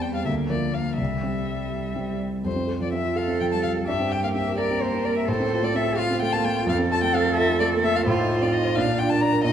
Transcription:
0.00 0.28 E2 soft
0.00 0.21 G3 soft
0.00 0.23 G3 soft
0.00 0.22 C4 soft
0.00 0.22 G4 soft
0.00 0.14 G5 medium
0.15 0.25 F5 medium
0.25 0.49 D2 soft
0.25 0.98 A#3 soft
0.25 0.34 E5 soft
0.49 0.94 F3 soft
0.49 0.94 A#3 soft
0.49 0.95 A#4 soft
0.49 0.76 D5 soft
0.74 0.98 F5 medium
0.98 1.22 C2 soft
0.98 2.23 G3 soft
0.98 2.18 E5 soft
1.23 1.93 G3 soft
1.23 1.93 C4 soft
1.23 1.93 G4 soft
1.95 2.40 G3 soft
1.95 2.41 C4 soft
1.95 2.41 G4 soft
2.44 3.83 F2 soft
2.44 2.79 C5 medium
2.56 2.76 C4 soft
2.67 2.87 A4 soft
2.80 3.00 F3 soft
2.80 2.93 D5 soft
2.93 3.12 C4 soft
2.93 3.18 E5 medium
3.05 3.24 F4 soft
3.16 3.35 A4 soft
3.16 3.84 A4 soft
3.16 3.40 F5 medium
3.28 3.47 C4 soft
3.40 3.59 F3 soft
3.40 3.45 G5 medium
3.52 3.64 G3 soft
3.52 3.63 A5 medium
3.63 3.83 F3 soft
3.63 3.71 F5 medium
3.77 3.88 A4 soft
3.87 5.24 G2 soft
3.87 4.60 G4 medium
3.87 4.13 E5 medium
4.00 4.18 C4 soft
4.11 4.30 G4 soft
4.11 4.23 G5 medium
4.23 4.41 A#3 soft
4.23 4.28 F5 soft
4.34 4.54 C4 soft
4.34 4.57 E5 medium
4.47 4.65 A#4 soft
4.58 4.77 G4 soft
4.58 5.28 A#4 soft
4.58 4.83 D5 medium
4.71 4.89 C4 soft
4.82 5.00 A#3 soft
4.82 5.06 C5 medium
4.95 5.06 C4 soft
5.05 5.24 A#3 soft
5.05 5.16 D5 medium
5.16 5.28 G4 soft
5.16 5.29 E5 medium
5.28 6.63 A2 medium
5.28 6.00 A4 medium
5.28 5.65 C5 medium
5.40 5.58 C4 soft
5.51 5.70 F4 soft
5.63 5.82 A3 soft
5.63 5.77 D5 medium
5.75 5.93 C4 soft
5.75 5.97 E5 medium
5.87 6.05 A4 soft
5.98 6.67 F4 medium
5.98 6.17 F4 soft
5.98 6.21 F5 medium
6.11 6.29 C4 soft
6.22 6.40 A3 soft
6.22 6.34 G5 medium
6.33 6.45 A#3 soft
6.33 6.46 A5 medium
6.44 6.63 A3 soft
6.44 6.68 G5 medium
6.56 6.68 F4 soft
6.66 8.02 F2 medium
6.66 8.04 A4 medium
6.66 6.76 F5 medium
6.79 6.97 C4 soft
6.91 7.09 F4 medium
6.91 7.03 A5 medium
7.03 7.21 A3 soft
7.03 7.16 G5 medium
7.14 7.32 C4 soft
7.14 7.36 F5 medium
7.27 7.44 A4 soft
7.37 7.55 F4 medium
7.37 7.60 E5 medium
7.49 7.67 C4 soft
7.60 7.79 A3 soft
7.60 7.68 D5 medium
7.73 7.84 A#3 soft
7.84 8.02 A3 soft
7.84 7.97 E5 medium
7.95 8.06 F4 soft
7.95 8.06 F5 medium
8.07 8.73 A2 medium
8.07 8.78 F4 medium
8.07 8.43 C5 medium
8.18 8.36 D#4 soft
8.29 8.48 F4 soft
8.42 8.60 C4 soft
8.42 8.54 D5 medium
8.53 8.71 D#4 soft
8.53 8.76 D#5 medium
8.65 8.76 C5 soft
8.75 9.43 A#2 medium
8.75 9.45 D4 medium
8.75 9.00 F5 medium
8.88 9.06 D4 soft
8.99 9.17 F4 soft
8.99 9.11 G5 medium
9.09 9.29 A#3 soft
9.09 9.22 A5 medium
9.21 9.40 D4 soft
9.21 9.44 A#5 medium
9.33 9.45 A#4 soft
9.44 9.53 A#2 medium
9.44 9.53 D#4 medium
9.44 9.53 D#5 medium

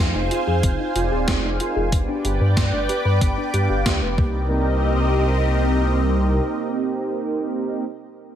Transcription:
0.00 0.13 F2 loud
0.00 0.92 C4 medium
0.00 0.92 D#4 medium
0.00 0.92 F4 medium
0.00 0.92 G#4 medium
0.00 0.92 C5 medium
0.00 1.90 C5 medium
0.00 1.88 F5 medium
0.00 1.88 G#5 medium
0.15 0.29 F1 medium
0.15 0.30 D#4 medium
0.31 0.38 F4 medium
0.31 closed hi-hat medium
0.47 0.62 F2 medium
0.47 0.63 G#4 loud
0.63 0.78 F1 loud
0.63 0.70 C4 medium
0.63 kick loud
0.63 closed hi-hat medium
0.80 0.95 D#4 medium
0.95 1.10 F1 medium
0.95 1.56 C4 medium
0.95 1.56 D#4 medium
0.95 1.56 F4 medium
0.95 1.03 F4 medium
0.95 1.56 G#4 medium
0.95 1.56 D5 loud
0.95 closed hi-hat medium
1.12 1.26 D#1 medium
1.12 1.27 G#4 loud
1.28 1.42 F1 loud
1.28 1.35 C4 medium
1.28 kick loud
1.28 snare loud
1.28 closed hi-hat medium
1.44 1.58 F1 medium
1.44 1.59 D#4 medium
1.60 1.88 C4 medium
1.60 1.88 D#4 medium
1.60 1.88 F4 medium
1.60 1.67 F4 medium
1.60 1.88 G#4 medium
1.60 1.88 A#4 loud
1.60 closed hi-hat medium
1.76 1.91 F1 medium
1.76 1.92 G#4 medium
1.92 2.07 G1 medium
1.92 3.50 B3 medium
1.92 1.99 B3 medium
1.92 3.50 D4 medium
1.92 3.50 G4 medium
1.92 3.50 B4 medium
1.92 4.16 B4 medium
1.92 3.50 D5 medium
1.92 4.16 D5 medium
1.92 4.16 G5 medium
1.92 4.16 D6 medium
1.92 kick loud
1.92 closed hi-hat medium
2.09 2.24 D4 medium
2.25 2.39 G1 medium
2.25 2.32 G4 medium
2.25 closed hi-hat medium
2.41 2.55 G2 medium
2.41 2.56 B4 medium
2.57 2.71 G2 loud
2.57 2.64 B3 medium
2.57 kick loud
2.57 snare loud
2.57 closed hi-hat medium
2.73 2.87 G1 medium
2.73 2.88 D4 medium
2.89 2.96 G4 medium
2.89 closed hi-hat medium
3.05 3.20 G2 medium
3.05 3.21 B4 loud
3.21 3.36 G1 loud
3.21 3.28 B3 medium
3.21 kick loud
3.21 closed hi-hat medium
3.38 3.53 D4 medium
3.54 3.68 G2 medium
3.54 4.14 B3 medium
3.54 4.14 D4 medium
3.54 3.69 G4 medium
3.54 4.14 G4 medium
3.54 4.14 B4 medium
3.54 4.14 F5 loud
3.54 closed hi-hat medium
3.70 3.84 G1 medium
3.70 3.81 G4 medium
3.86 4.00 D2 medium
3.86 3.97 B3 medium
3.86 kick loud
3.86 snare loud
3.86 closed hi-hat medium
4.02 4.16 F1 medium
4.02 4.17 B4 medium
4.18 6.40 C2 medium
4.18 7.84 A#3 medium
4.18 4.79 A#3 medium
4.18 7.84 C4 medium
4.18 7.84 D#4 medium
4.18 7.84 G4 medium
4.18 7.84 A#4 medium
4.18 7.84 D#5 medium
4.18 kick loud

